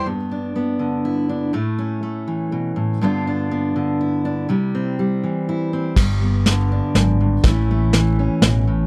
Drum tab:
CC |------|------|------|------|
HH |------|------|------|------|
SD |------|------|------|------|
BD |------|------|------|------|

CC |x-----|------|
HH |--x-x-|x-x-x-|
SD |o-o-o-|o-o-o-|
BD |o-----|o-----|